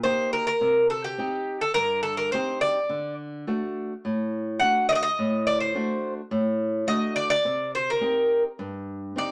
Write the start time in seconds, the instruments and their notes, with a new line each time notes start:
0.04 nylon-string guitar A#3 D#4 G4, bouzouki C5
0.33 bouzouki A#4
0.47 bouzouki A#4
0.61 nylon-string guitar C3
0.90 bouzouki A4
1.04 bouzouki G4
1.18 nylon-string guitar C4 D#4 G4
1.61 bouzouki A4
1.74 nylon-string guitar G2, bouzouki A#4
2.03 bouzouki A4
2.17 bouzouki A#4
2.32 nylon-string guitar C4 D#4 G4, bouzouki C5
2.61 bouzouki D5
2.89 nylon-string guitar D3
3.47 nylon-string guitar A3 D4 F#4
4.05 nylon-string guitar A2
4.60 nylon-string guitar A3 D4 F#4, bouzouki F#5
4.89 bouzouki D5 D#5
4.95 bouzouki D#5
5.03 bouzouki D#5
5.19 nylon-string guitar A2
5.47 bouzouki D5
5.60 bouzouki C5
5.75 nylon-string guitar A3 D4 F#4
6.31 nylon-string guitar A2
6.87 nylon-string guitar A3 D4 F#4, bouzouki D#5
7.16 bouzouki D5
7.30 bouzouki D5
7.45 nylon-string guitar C3
7.75 bouzouki C5
7.90 bouzouki A#4
8.01 nylon-string guitar C4 D#4 G4
8.59 nylon-string guitar G2
9.16 nylon-string guitar C4 D#4 G4, bouzouki D5